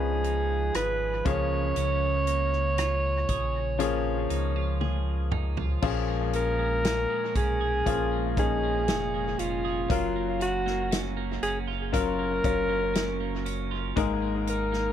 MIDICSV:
0, 0, Header, 1, 6, 480
1, 0, Start_track
1, 0, Tempo, 1016949
1, 834, Time_signature, 4, 2, 24, 8
1, 7045, End_track
2, 0, Start_track
2, 0, Title_t, "Alto saxophone"
2, 0, Program_c, 0, 65
2, 0, Note_on_c, 0, 68, 87
2, 339, Note_off_c, 0, 68, 0
2, 355, Note_on_c, 0, 71, 99
2, 593, Note_on_c, 0, 73, 101
2, 600, Note_off_c, 0, 71, 0
2, 2273, Note_off_c, 0, 73, 0
2, 3002, Note_on_c, 0, 70, 109
2, 3459, Note_off_c, 0, 70, 0
2, 3476, Note_on_c, 0, 68, 94
2, 3936, Note_off_c, 0, 68, 0
2, 3961, Note_on_c, 0, 68, 105
2, 4433, Note_on_c, 0, 65, 87
2, 4440, Note_off_c, 0, 68, 0
2, 4673, Note_off_c, 0, 65, 0
2, 4678, Note_on_c, 0, 65, 83
2, 4900, Note_off_c, 0, 65, 0
2, 4918, Note_on_c, 0, 66, 92
2, 5250, Note_off_c, 0, 66, 0
2, 5394, Note_on_c, 0, 68, 81
2, 5469, Note_off_c, 0, 68, 0
2, 5636, Note_on_c, 0, 70, 101
2, 6336, Note_off_c, 0, 70, 0
2, 6843, Note_on_c, 0, 70, 89
2, 7045, Note_off_c, 0, 70, 0
2, 7045, End_track
3, 0, Start_track
3, 0, Title_t, "Clean electric guitar"
3, 0, Program_c, 1, 27
3, 0, Note_on_c, 1, 49, 70
3, 0, Note_on_c, 1, 53, 66
3, 0, Note_on_c, 1, 56, 55
3, 0, Note_on_c, 1, 63, 54
3, 0, Note_on_c, 1, 68, 64
3, 108, Note_off_c, 1, 63, 0
3, 114, Note_on_c, 1, 63, 52
3, 353, Note_off_c, 1, 68, 0
3, 355, Note_on_c, 1, 68, 57
3, 586, Note_off_c, 1, 49, 0
3, 592, Note_on_c, 1, 49, 74
3, 642, Note_off_c, 1, 63, 0
3, 810, Note_off_c, 1, 56, 0
3, 829, Note_off_c, 1, 49, 0
3, 835, Note_on_c, 1, 49, 77
3, 1074, Note_on_c, 1, 58, 52
3, 1088, Note_off_c, 1, 68, 0
3, 1314, Note_on_c, 1, 65, 56
3, 1528, Note_off_c, 1, 53, 0
3, 1552, Note_on_c, 1, 68, 63
3, 1791, Note_on_c, 1, 53, 66
3, 2028, Note_off_c, 1, 65, 0
3, 2030, Note_on_c, 1, 63, 56
3, 2152, Note_off_c, 1, 63, 0
3, 2152, Note_on_c, 1, 65, 45
3, 2269, Note_off_c, 1, 68, 0
3, 2271, Note_on_c, 1, 68, 60
3, 2507, Note_off_c, 1, 65, 0
3, 2509, Note_on_c, 1, 63, 54
3, 2631, Note_off_c, 1, 63, 0
3, 2631, Note_on_c, 1, 65, 51
3, 2748, Note_off_c, 1, 49, 0
3, 2750, Note_on_c, 1, 46, 80
3, 2751, Note_off_c, 1, 68, 0
3, 2753, Note_on_c, 1, 68, 64
3, 2801, Note_off_c, 1, 65, 0
3, 2802, Note_off_c, 1, 58, 0
3, 2872, Note_on_c, 1, 56, 52
3, 2991, Note_on_c, 1, 61, 54
3, 3103, Note_off_c, 1, 56, 0
3, 3109, Note_on_c, 1, 56, 54
3, 3228, Note_off_c, 1, 61, 0
3, 3230, Note_on_c, 1, 61, 57
3, 3345, Note_off_c, 1, 56, 0
3, 3351, Note_on_c, 1, 56, 56
3, 3443, Note_off_c, 1, 53, 0
3, 3470, Note_off_c, 1, 61, 0
3, 3472, Note_on_c, 1, 61, 57
3, 3586, Note_off_c, 1, 68, 0
3, 3592, Note_on_c, 1, 68, 66
3, 3707, Note_off_c, 1, 46, 0
3, 3710, Note_off_c, 1, 68, 0
3, 3712, Note_on_c, 1, 46, 80
3, 3715, Note_on_c, 1, 68, 67
3, 3826, Note_off_c, 1, 56, 0
3, 3832, Note_on_c, 1, 56, 52
3, 3950, Note_off_c, 1, 61, 0
3, 3952, Note_on_c, 1, 61, 55
3, 4069, Note_off_c, 1, 56, 0
3, 4075, Note_on_c, 1, 56, 52
3, 4193, Note_off_c, 1, 61, 0
3, 4195, Note_on_c, 1, 61, 55
3, 4308, Note_off_c, 1, 56, 0
3, 4314, Note_on_c, 1, 56, 53
3, 4434, Note_off_c, 1, 61, 0
3, 4436, Note_on_c, 1, 61, 57
3, 4547, Note_off_c, 1, 68, 0
3, 4553, Note_on_c, 1, 68, 66
3, 4673, Note_on_c, 1, 54, 80
3, 4674, Note_off_c, 1, 68, 0
3, 4721, Note_off_c, 1, 46, 0
3, 4722, Note_off_c, 1, 56, 0
3, 4794, Note_on_c, 1, 58, 54
3, 4909, Note_off_c, 1, 61, 0
3, 4911, Note_on_c, 1, 61, 55
3, 5030, Note_off_c, 1, 58, 0
3, 5032, Note_on_c, 1, 58, 59
3, 5145, Note_off_c, 1, 61, 0
3, 5151, Note_on_c, 1, 61, 57
3, 5270, Note_off_c, 1, 58, 0
3, 5271, Note_on_c, 1, 58, 65
3, 5388, Note_off_c, 1, 61, 0
3, 5394, Note_on_c, 1, 61, 61
3, 5511, Note_on_c, 1, 65, 67
3, 5627, Note_off_c, 1, 54, 0
3, 5630, Note_off_c, 1, 65, 0
3, 5632, Note_on_c, 1, 54, 79
3, 5635, Note_on_c, 1, 65, 70
3, 5752, Note_off_c, 1, 58, 0
3, 5753, Note_on_c, 1, 58, 51
3, 5869, Note_off_c, 1, 61, 0
3, 5875, Note_on_c, 1, 61, 59
3, 5988, Note_off_c, 1, 58, 0
3, 5990, Note_on_c, 1, 58, 54
3, 6101, Note_off_c, 1, 61, 0
3, 6107, Note_on_c, 1, 61, 57
3, 6230, Note_off_c, 1, 58, 0
3, 6232, Note_on_c, 1, 58, 59
3, 6345, Note_off_c, 1, 61, 0
3, 6351, Note_on_c, 1, 61, 61
3, 6467, Note_off_c, 1, 65, 0
3, 6472, Note_on_c, 1, 65, 64
3, 6589, Note_off_c, 1, 54, 0
3, 6591, Note_on_c, 1, 56, 83
3, 6593, Note_off_c, 1, 65, 0
3, 6596, Note_on_c, 1, 68, 65
3, 6641, Note_off_c, 1, 61, 0
3, 6710, Note_off_c, 1, 58, 0
3, 6712, Note_on_c, 1, 58, 55
3, 6832, Note_on_c, 1, 63, 61
3, 6947, Note_off_c, 1, 58, 0
3, 6949, Note_on_c, 1, 58, 60
3, 7045, Note_off_c, 1, 56, 0
3, 7045, Note_off_c, 1, 58, 0
3, 7045, Note_off_c, 1, 63, 0
3, 7045, Note_off_c, 1, 68, 0
3, 7045, End_track
4, 0, Start_track
4, 0, Title_t, "Grand piano"
4, 0, Program_c, 2, 0
4, 0, Control_c, 2, 64, 127
4, 0, Note_on_c, 2, 53, 69
4, 0, Note_on_c, 2, 61, 62
4, 0, Note_on_c, 2, 63, 59
4, 0, Note_on_c, 2, 71, 80
4, 583, Note_off_c, 2, 53, 0
4, 587, Note_off_c, 2, 61, 0
4, 590, Note_on_c, 2, 53, 71
4, 592, Note_on_c, 2, 58, 69
4, 593, Note_on_c, 2, 49, 58
4, 594, Note_on_c, 2, 61, 66
4, 596, Note_off_c, 2, 63, 0
4, 598, Note_off_c, 2, 71, 0
4, 598, Note_on_c, 2, 68, 82
4, 601, Control_c, 2, 64, 0
4, 692, Control_c, 2, 64, 127
4, 1295, Note_off_c, 2, 49, 0
4, 1504, Note_off_c, 2, 53, 0
4, 1505, Note_off_c, 2, 58, 0
4, 1506, Note_off_c, 2, 61, 0
4, 1508, Note_off_c, 2, 68, 0
4, 1787, Note_on_c, 2, 53, 77
4, 1791, Note_on_c, 2, 58, 77
4, 1792, Note_on_c, 2, 61, 75
4, 1795, Note_on_c, 2, 68, 99
4, 2703, Note_off_c, 2, 53, 0
4, 2705, Note_off_c, 2, 58, 0
4, 2705, Note_off_c, 2, 61, 0
4, 2707, Note_off_c, 2, 68, 0
4, 2748, Note_on_c, 2, 53, 81
4, 2750, Note_on_c, 2, 46, 72
4, 2751, Note_on_c, 2, 58, 68
4, 2751, Note_on_c, 2, 61, 72
4, 2755, Note_on_c, 2, 68, 85
4, 2761, Control_c, 2, 64, 0
4, 2851, Control_c, 2, 64, 127
4, 3453, Note_off_c, 2, 46, 0
4, 3663, Note_off_c, 2, 53, 0
4, 3664, Note_off_c, 2, 58, 0
4, 3665, Note_off_c, 2, 61, 0
4, 3667, Note_off_c, 2, 68, 0
4, 3709, Note_on_c, 2, 53, 68
4, 3711, Note_on_c, 2, 58, 68
4, 3713, Note_on_c, 2, 61, 63
4, 3716, Note_on_c, 2, 65, 73
4, 3940, Note_off_c, 2, 53, 0
4, 3941, Note_off_c, 2, 58, 0
4, 3942, Note_off_c, 2, 61, 0
4, 3943, Note_off_c, 2, 65, 0
4, 3949, Note_on_c, 2, 53, 64
4, 3953, Note_on_c, 2, 58, 56
4, 3955, Note_on_c, 2, 61, 61
4, 3957, Note_on_c, 2, 63, 71
4, 4636, Note_off_c, 2, 53, 0
4, 4638, Note_off_c, 2, 58, 0
4, 4638, Note_off_c, 2, 61, 0
4, 4639, Note_off_c, 2, 63, 0
4, 4670, Note_on_c, 2, 54, 65
4, 4670, Note_on_c, 2, 61, 57
4, 4674, Note_on_c, 2, 77, 59
4, 4676, Note_on_c, 2, 70, 75
4, 4679, Control_c, 2, 64, 0
4, 4766, Control_c, 2, 64, 127
4, 5584, Note_off_c, 2, 54, 0
4, 5584, Note_off_c, 2, 61, 0
4, 5586, Note_off_c, 2, 77, 0
4, 5587, Note_off_c, 2, 70, 0
4, 5628, Note_on_c, 2, 54, 73
4, 5631, Note_on_c, 2, 61, 71
4, 5633, Note_on_c, 2, 65, 64
4, 5634, Note_on_c, 2, 70, 77
4, 5859, Note_off_c, 2, 54, 0
4, 5860, Note_off_c, 2, 61, 0
4, 5862, Note_off_c, 2, 65, 0
4, 5862, Note_off_c, 2, 70, 0
4, 5871, Note_on_c, 2, 54, 66
4, 5873, Note_on_c, 2, 61, 54
4, 5873, Note_on_c, 2, 65, 62
4, 5876, Note_on_c, 2, 73, 71
4, 6557, Note_off_c, 2, 54, 0
4, 6557, Note_off_c, 2, 61, 0
4, 6557, Note_off_c, 2, 65, 0
4, 6559, Note_off_c, 2, 73, 0
4, 6589, Note_on_c, 2, 56, 80
4, 6592, Note_on_c, 2, 58, 71
4, 6594, Note_on_c, 2, 44, 70
4, 6594, Note_on_c, 2, 63, 75
4, 6596, Note_on_c, 2, 70, 94
4, 6600, Control_c, 2, 64, 0
4, 6696, Control_c, 2, 64, 127
4, 7045, Note_off_c, 2, 44, 0
4, 7045, Note_off_c, 2, 56, 0
4, 7045, Note_off_c, 2, 58, 0
4, 7045, Note_off_c, 2, 63, 0
4, 7045, Note_off_c, 2, 70, 0
4, 7045, End_track
5, 0, Start_track
5, 0, Title_t, "Sub bass"
5, 0, Program_c, 3, 38
5, 0, Note_on_c, 3, 37, 94
5, 334, Note_off_c, 3, 37, 0
5, 352, Note_on_c, 3, 32, 82
5, 576, Note_off_c, 3, 32, 0
5, 593, Note_on_c, 3, 37, 82
5, 817, Note_off_c, 3, 37, 0
5, 833, Note_on_c, 3, 37, 103
5, 1535, Note_off_c, 3, 37, 0
5, 1553, Note_on_c, 3, 34, 82
5, 2015, Note_off_c, 3, 34, 0
5, 2030, Note_on_c, 3, 37, 105
5, 2733, Note_off_c, 3, 37, 0
5, 2751, Note_on_c, 3, 34, 97
5, 3334, Note_off_c, 3, 34, 0
5, 3471, Note_on_c, 3, 35, 85
5, 3696, Note_off_c, 3, 35, 0
5, 3713, Note_on_c, 3, 34, 99
5, 4194, Note_on_c, 3, 29, 95
5, 4201, Note_off_c, 3, 34, 0
5, 4417, Note_off_c, 3, 29, 0
5, 4434, Note_on_c, 3, 29, 90
5, 4657, Note_off_c, 3, 29, 0
5, 4672, Note_on_c, 3, 30, 101
5, 5374, Note_off_c, 3, 30, 0
5, 5391, Note_on_c, 3, 30, 80
5, 5854, Note_off_c, 3, 30, 0
5, 5873, Note_on_c, 3, 30, 97
5, 6575, Note_off_c, 3, 30, 0
5, 6593, Note_on_c, 3, 32, 103
5, 7045, Note_off_c, 3, 32, 0
5, 7045, End_track
6, 0, Start_track
6, 0, Title_t, "Drums"
6, 115, Note_on_c, 9, 42, 55
6, 162, Note_off_c, 9, 42, 0
6, 351, Note_on_c, 9, 42, 70
6, 354, Note_on_c, 9, 37, 97
6, 399, Note_off_c, 9, 42, 0
6, 402, Note_off_c, 9, 37, 0
6, 593, Note_on_c, 9, 36, 101
6, 594, Note_on_c, 9, 42, 72
6, 640, Note_off_c, 9, 36, 0
6, 641, Note_off_c, 9, 42, 0
6, 830, Note_on_c, 9, 42, 74
6, 878, Note_off_c, 9, 42, 0
6, 1071, Note_on_c, 9, 42, 64
6, 1118, Note_off_c, 9, 42, 0
6, 1194, Note_on_c, 9, 37, 32
6, 1242, Note_off_c, 9, 37, 0
6, 1312, Note_on_c, 9, 42, 81
6, 1315, Note_on_c, 9, 37, 98
6, 1359, Note_off_c, 9, 42, 0
6, 1362, Note_off_c, 9, 37, 0
6, 1551, Note_on_c, 9, 42, 64
6, 1552, Note_on_c, 9, 36, 74
6, 1598, Note_off_c, 9, 42, 0
6, 1600, Note_off_c, 9, 36, 0
6, 1793, Note_on_c, 9, 42, 86
6, 1840, Note_off_c, 9, 42, 0
6, 2030, Note_on_c, 9, 42, 61
6, 2078, Note_off_c, 9, 42, 0
6, 2270, Note_on_c, 9, 48, 47
6, 2317, Note_off_c, 9, 48, 0
6, 2509, Note_on_c, 9, 45, 80
6, 2556, Note_off_c, 9, 45, 0
6, 2630, Note_on_c, 9, 43, 78
6, 2677, Note_off_c, 9, 43, 0
6, 2749, Note_on_c, 9, 49, 81
6, 2750, Note_on_c, 9, 36, 94
6, 2796, Note_off_c, 9, 49, 0
6, 2798, Note_off_c, 9, 36, 0
6, 2989, Note_on_c, 9, 42, 59
6, 3037, Note_off_c, 9, 42, 0
6, 3231, Note_on_c, 9, 42, 89
6, 3235, Note_on_c, 9, 38, 102
6, 3279, Note_off_c, 9, 42, 0
6, 3282, Note_off_c, 9, 38, 0
6, 3471, Note_on_c, 9, 42, 69
6, 3472, Note_on_c, 9, 36, 75
6, 3518, Note_off_c, 9, 42, 0
6, 3519, Note_off_c, 9, 36, 0
6, 3712, Note_on_c, 9, 36, 78
6, 3713, Note_on_c, 9, 42, 94
6, 3760, Note_off_c, 9, 36, 0
6, 3760, Note_off_c, 9, 42, 0
6, 3952, Note_on_c, 9, 36, 87
6, 3954, Note_on_c, 9, 42, 54
6, 3999, Note_off_c, 9, 36, 0
6, 4001, Note_off_c, 9, 42, 0
6, 4191, Note_on_c, 9, 42, 70
6, 4194, Note_on_c, 9, 38, 100
6, 4238, Note_off_c, 9, 42, 0
6, 4241, Note_off_c, 9, 38, 0
6, 4432, Note_on_c, 9, 42, 67
6, 4480, Note_off_c, 9, 42, 0
6, 4673, Note_on_c, 9, 36, 97
6, 4675, Note_on_c, 9, 42, 79
6, 4720, Note_off_c, 9, 36, 0
6, 4722, Note_off_c, 9, 42, 0
6, 4913, Note_on_c, 9, 42, 67
6, 4961, Note_off_c, 9, 42, 0
6, 5036, Note_on_c, 9, 38, 34
6, 5083, Note_off_c, 9, 38, 0
6, 5155, Note_on_c, 9, 42, 96
6, 5158, Note_on_c, 9, 38, 100
6, 5202, Note_off_c, 9, 42, 0
6, 5205, Note_off_c, 9, 38, 0
6, 5393, Note_on_c, 9, 42, 67
6, 5440, Note_off_c, 9, 42, 0
6, 5634, Note_on_c, 9, 36, 85
6, 5636, Note_on_c, 9, 42, 90
6, 5682, Note_off_c, 9, 36, 0
6, 5683, Note_off_c, 9, 42, 0
6, 5873, Note_on_c, 9, 36, 85
6, 5874, Note_on_c, 9, 42, 59
6, 5920, Note_off_c, 9, 36, 0
6, 5921, Note_off_c, 9, 42, 0
6, 6114, Note_on_c, 9, 42, 74
6, 6117, Note_on_c, 9, 38, 101
6, 6161, Note_off_c, 9, 42, 0
6, 6164, Note_off_c, 9, 38, 0
6, 6353, Note_on_c, 9, 42, 73
6, 6400, Note_off_c, 9, 42, 0
6, 6593, Note_on_c, 9, 36, 102
6, 6594, Note_on_c, 9, 42, 75
6, 6640, Note_off_c, 9, 36, 0
6, 6641, Note_off_c, 9, 42, 0
6, 6831, Note_on_c, 9, 42, 68
6, 6879, Note_off_c, 9, 42, 0
6, 6954, Note_on_c, 9, 38, 34
6, 7001, Note_off_c, 9, 38, 0
6, 7045, End_track
0, 0, End_of_file